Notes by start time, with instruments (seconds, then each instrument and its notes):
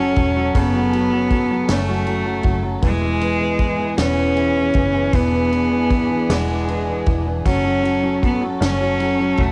Already playing: fingered electric bass F#1, grand piano F#3 C#4, string section F#3 C#4 A4, cello C#4
0.16 fingered electric bass E1, grand piano F#3, kick, ride
0.36 grand piano F#3
0.55 fingered electric bass F#1, grand piano C#3, kick, ride
0.59 cello B3
0.74 grand piano F#3
0.93 grand piano F#3, ride
1.13 grand piano F#3
1.31 grand piano F#3, kick, ride
1.51 grand piano F#3
1.69 fingered electric bass F#1, cello A3, grand piano C#4, snare, ride
1.89 grand piano F#3
2.07 grand piano F#3, ride
2.26 grand piano F#3
2.43 fingered electric bass F#1, grand piano F#3, kick, ride
2.63 grand piano F#3
2.82 fingered electric bass E1, grand piano E3, string section E3 B3 G#4, cello G#3, kick, ride
3.02 grand piano E3
3.21 grand piano E3, ride
3.41 grand piano E3
3.59 grand piano E3, kick, ride
3.79 grand piano E3
3.98 fingered electric bass E1, grand piano B3, cello C#4, snare, ride
4.18 grand piano E3
4.36 grand piano E3, ride
4.56 grand piano E3
4.74 fingered electric bass F#1, grand piano E3, kick, ride
4.94 grand piano E3
5.13 fingered electric bass E1, grand piano E3, cello B3, string section D4 G#4, kick, ride
5.32 grand piano E3
5.52 grand piano E3, ride
5.71 grand piano E3
5.91 grand piano E3, kick, ride
6.11 grand piano E3
6.29 fingered electric bass E1, cello G#3, grand piano B3, snare, ride
6.50 grand piano E3
6.68 grand piano E3, ride
6.89 grand piano E3
7.06 fingered electric bass E1, grand piano E3, kick, ride
7.27 grand piano E3
7.45 fingered electric bass F#1, grand piano F#3, string section F#3 C#4 A4, cello C#4, kick, ride
7.65 grand piano F#3
7.83 grand piano F#3, ride
8.03 grand piano F#3
8.22 grand piano F#3, cello B3, kick, ride
8.41 grand piano F#3
8.60 fingered electric bass F#1, grand piano C#4, cello C#4, snare, ride
8.81 grand piano F#3
9.00 grand piano F#3, ride
9.20 grand piano F#3
9.37 fingered electric bass E1, grand piano F#3, cello A3, kick, ride